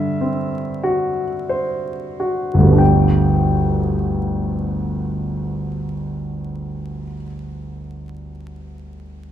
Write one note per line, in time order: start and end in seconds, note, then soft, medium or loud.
0.00 2.76 G2 soft
0.00 0.57 D3 soft
0.00 2.78 E5 medium
0.21 1.22 C4 soft
0.83 1.91 F#4 soft
1.49 2.56 C5 soft
2.20 2.81 F#4 soft
2.54 7.02 G1 soft
2.58 7.07 D2 soft
2.64 7.12 G3 soft
2.64 7.16 B3 soft
2.72 7.21 D4 soft
2.77 7.25 G4 soft
2.77 7.26 G5 soft